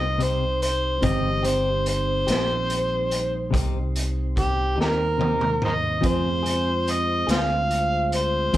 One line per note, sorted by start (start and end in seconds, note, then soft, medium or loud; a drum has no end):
0.00 0.98 C2 medium
0.00 0.98 G3 medium
0.00 0.97 C4 medium
0.00 0.98 D#4 medium
0.00 0.98 D#4 soft
0.00 0.99 G4 medium
0.00 0.98 C5 medium
0.00 0.99 C5 medium
0.00 0.24 D#5 medium
0.18 0.44 C3 medium
0.18 0.44 C4 medium
0.18 0.44 D#4 medium
0.18 0.45 G4 medium
0.18 closed hi-hat soft
0.23 0.61 C5 medium
0.62 1.07 C5 medium
0.62 closed hi-hat medium
1.01 2.24 G1 medium
1.01 1.27 C3 medium
1.01 1.44 C#3 medium
1.01 1.44 E3 medium
1.01 1.44 G#3 medium
1.01 5.98 C4 medium
1.01 1.27 C4 medium
1.01 5.99 D#4 soft
1.01 1.28 D#4 medium
1.01 6.00 G4 medium
1.01 1.28 G4 medium
1.01 1.42 C5 medium
1.01 6.00 C5 medium
1.01 kick medium
1.01 closed hi-hat medium
1.05 1.47 D#5 medium
1.42 5.99 G3 medium
1.42 5.98 C4 medium
1.42 1.69 C4 soft
1.42 5.99 D#4 medium
1.42 1.69 D#4 soft
1.42 1.68 G4 medium
1.42 5.99 C5 medium
1.42 1.85 C5 medium
1.42 closed hi-hat medium
1.86 3.50 C5 loud
1.86 closed hi-hat medium
2.27 3.49 A#1 medium
2.27 2.53 C4 soft
2.27 2.53 D#4 soft
2.27 2.52 G4 soft
2.27 snare medium
2.27 closed hi-hat medium
2.70 closed hi-hat medium
3.11 closed hi-hat medium
3.51 4.75 C2 medium
3.51 3.77 C3 medium
3.51 3.78 C4 medium
3.51 3.78 D#4 medium
3.51 3.78 G4 medium
3.51 kick medium
3.51 closed hi-hat medium
3.96 closed hi-hat medium
4.37 4.78 G4 medium
4.37 kick medium
4.37 closed hi-hat medium
4.76 5.99 D#2 medium
4.76 5.03 C4 soft
4.76 5.03 D#4 soft
4.76 5.02 G4 soft
4.81 4.88 D#4 soft
4.81 4.88 G4 soft
4.81 5.61 A#4 medium
4.81 snare soft
5.18 5.44 C3 medium
5.18 5.45 C4 medium
5.18 5.45 D#4 medium
5.18 5.45 G4 medium
5.18 high tom medium
5.41 mid tom medium
5.62 5.73 A#4 medium
5.62 5.71 C5 medium
5.62 6.08 D#5 medium
5.62 mid tom medium
6.01 7.25 F2 medium
6.01 6.45 C#3 medium
6.01 6.27 F3 medium
6.01 8.57 C4 medium
6.01 6.28 C4 medium
6.01 8.57 F4 soft
6.01 6.28 F4 medium
6.01 6.43 F4 medium
6.01 6.28 G#4 medium
6.01 8.57 G#4 soft
6.01 6.44 C5 medium
6.01 kick medium
6.01 closed hi-hat medium
6.05 6.46 A3 medium
6.05 8.57 C5 medium
6.05 6.92 C5 medium
6.43 8.57 G#3 medium
6.43 8.57 C4 medium
6.43 6.70 C4 soft
6.43 6.70 F4 soft
6.43 8.57 F4 medium
6.43 6.69 G#4 soft
6.43 8.57 C5 medium
6.43 closed hi-hat medium
6.88 7.29 D#5 medium
6.88 closed hi-hat medium
7.27 8.50 D2 medium
7.27 7.54 C4 soft
7.27 7.53 F4 soft
7.27 7.53 G#4 soft
7.27 7.40 C5 medium
7.27 8.11 F5 medium
7.27 closed hi-hat medium
7.31 snare loud
7.71 closed hi-hat medium
8.12 8.57 C5 loud
8.12 closed hi-hat medium
8.53 8.57 D#2 medium
8.53 8.57 F3 medium
8.53 8.57 C4 medium
8.53 kick medium
8.53 closed hi-hat medium